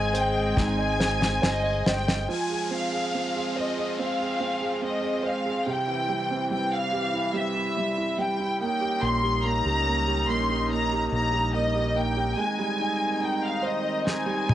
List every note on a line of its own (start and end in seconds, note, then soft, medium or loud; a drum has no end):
0.00 0.53 G#1 loud
0.00 2.25 G#3 medium
0.00 2.26 G#3 medium
0.00 2.27 C4 medium
0.00 0.55 D#4 soft
0.00 2.27 G#4 medium
0.00 0.14 C5 medium
0.00 0.35 D#5 medium
0.00 0.16 G#5 medium
0.14 0.98 C5 medium
0.14 0.59 G5 medium
0.14 closed hi-hat medium
0.35 0.77 D#5 soft
0.57 1.39 G#1 medium
0.57 2.25 D#4 medium
0.57 1.88 G#5 medium
0.57 kick medium
0.57 snare soft
0.79 1.19 D#5 soft
1.00 1.40 C5 soft
1.00 snare medium
1.21 1.62 D#5 medium
1.21 snare medium
1.42 1.84 G1 medium
1.42 1.85 C5 medium
1.42 1.85 D#5 medium
1.42 snare medium
1.63 2.06 D#5 soft
1.86 2.26 G1 medium
1.86 2.28 C5 soft
1.86 2.27 G5 medium
1.86 snare medium
2.08 2.28 D#5 soft
2.08 snare medium
2.29 5.62 F3 soft
2.29 5.64 G#3 soft
2.29 8.57 C4 soft
2.29 5.64 F4 medium
2.29 2.73 G#5 medium
2.29 downlifter soft
2.50 2.91 G#4 soft
2.71 3.13 C4 soft
2.71 3.53 F5 medium
2.93 3.35 G#4 soft
3.15 3.98 C4 soft
3.36 3.76 G#4 soft
3.56 5.21 C5 soft
3.56 3.99 D#5 medium
3.77 4.18 G#4 soft
3.99 4.39 C4 soft
3.99 4.79 F5 medium
4.20 4.59 G#4 soft
4.40 4.80 C4 soft
4.61 5.01 G#4 soft
4.82 5.64 C4 soft
4.82 5.22 D#5 medium
5.02 5.44 G#4 soft
5.23 5.65 C5 soft
5.23 5.67 F5 medium
5.46 5.66 G#4 soft
5.66 8.56 C3 medium
5.66 8.57 E3 medium
5.66 12.34 G3 soft
5.66 6.50 G5 medium
5.88 7.51 E3 soft
6.09 6.50 G3 soft
6.31 7.94 C4 soft
6.51 7.32 G3 soft
6.51 6.70 G5 medium
6.72 7.35 F5 medium
6.93 8.57 G4 soft
7.14 7.54 E4 soft
7.34 7.76 G3 soft
7.34 8.19 E5 medium
7.55 7.96 E4 soft
7.77 8.17 G3 soft
7.98 8.39 E4 soft
8.18 8.59 G3 soft
8.18 8.60 G5 medium
8.40 8.60 E4 soft
8.61 9.01 A#3 soft
8.61 12.35 C#4 soft
8.61 12.34 D#4 medium
8.61 9.00 G5 medium
8.81 9.22 G4 soft
9.02 9.61 A#1 medium
9.02 9.43 A#3 soft
9.02 9.44 C6 medium
9.23 9.65 G4 soft
9.44 9.86 A#3 soft
9.44 10.29 A#5 medium
9.65 10.28 C#2 medium
9.65 10.06 G4 soft
9.87 10.27 A#3 soft
10.07 10.48 G4 soft
10.28 11.08 A#1 medium
10.28 10.69 A#3 medium
10.28 10.71 C6 medium
10.50 10.91 G4 soft
10.71 11.12 A#3 soft
10.71 11.10 A#5 medium
10.93 11.31 G4 soft
11.12 12.34 A#1 medium
11.12 11.52 A#3 soft
11.12 11.51 A#5 medium
11.33 11.73 G4 soft
11.54 11.94 A#3 soft
11.54 11.93 D#5 medium
11.75 12.15 G4 soft
11.96 12.37 A#3 medium
11.96 12.38 G5 medium
12.17 12.37 G4 soft
12.37 14.54 D#3 medium
12.37 14.54 G#3 medium
12.37 14.54 C4 medium
12.37 14.54 D#4 medium
12.37 13.22 G#5 medium
12.37 swell medium
12.59 14.23 G3 soft
12.79 13.19 D#4 soft
13.21 14.04 D#4 soft
13.21 13.44 G5 medium
13.44 13.65 F5 medium
13.63 14.54 C5 soft
13.63 14.07 D#5 medium
14.05 14.47 D#4 soft
14.05 14.54 G#5 medium
14.05 snare soft
14.26 14.54 G3 soft
14.49 14.54 D#4 soft
14.49 high tom medium